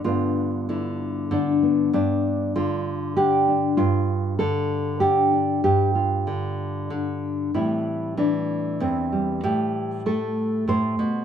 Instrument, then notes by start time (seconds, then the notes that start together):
nylon-string guitar
0.04 G2 D3 B3 D4 F4
0.69 D3 E4
1.31 D3 D4
1.63 B3
1.93 G2 D4
2.56 D3 F4
3.17 D3 G4
3.48 D4
3.77 G2 F4
4.39 D3 A4
5.00 D3 G4
5.34 D4
5.64 G2 G4
5.95 F4
6.27 D3
6.90 D3
7.54 A2 E3 G3 C4 E4
8.17 E3 D4
8.80 E2 C4
9.12 G3
9.44 A2 G4
10.06 A3 A4
10.68 A2 C5
10.99 B2